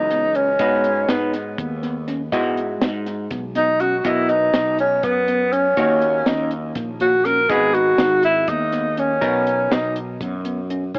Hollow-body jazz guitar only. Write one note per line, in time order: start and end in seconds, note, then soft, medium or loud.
0.00 0.57 E3 soft
0.00 0.57 F#3 medium
0.00 0.57 C#4 medium
0.00 0.57 B4 medium
0.59 2.29 G#3 medium
0.59 2.29 D#4 medium
0.59 2.29 F#4 medium
0.59 2.29 B4 medium
2.32 4.01 G#3 medium
2.32 4.02 E4 medium
2.32 4.02 F#4 medium
2.32 4.02 D#5 medium
4.04 5.74 B3 medium
4.04 5.74 F#4 medium
4.04 5.74 A#4 medium
4.04 5.74 D#5 medium
5.77 7.46 D#3 medium
5.77 7.46 D#4 medium
5.77 7.46 F#4 medium
5.77 7.46 C#5 medium
7.49 9.19 G#3 medium
7.49 9.19 D#4 medium
7.49 9.19 F#4 medium
7.49 9.19 B4 medium
9.21 10.91 B2 medium
9.21 10.91 B3 medium
9.21 10.91 D#4 medium
9.21 10.91 A#4 medium